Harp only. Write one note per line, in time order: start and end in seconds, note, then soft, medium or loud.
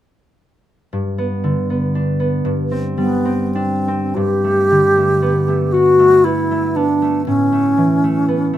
0.93 2.44 G2 soft
1.18 1.69 B3 soft
1.44 2.49 D3 soft
1.70 2.18 B3 soft
1.95 3.54 D4 soft
2.20 2.49 B3 soft
2.45 4.15 G2 soft
2.71 3.24 C4 soft
2.98 6.88 G3 soft
3.25 3.87 C4 soft
3.55 7.31 D4 soft
3.88 4.21 C4 soft
4.16 7.31 G2 soft
4.44 4.95 A3 soft
4.71 7.31 D3 soft
4.97 5.47 A3 soft
5.22 6.24 B3 soft
5.48 5.98 A3 soft
5.74 8.58 F#4 soft
5.99 6.50 A3 soft
6.25 6.75 B3 soft
6.51 7.01 A3 soft
6.76 7.19 B3 soft
7.02 7.51 A3 soft
7.27 8.58 A2 soft
7.52 8.02 A3 soft
7.77 8.58 E3 soft
8.04 8.52 A3 soft
8.28 8.58 B3 soft
8.53 8.58 A3 soft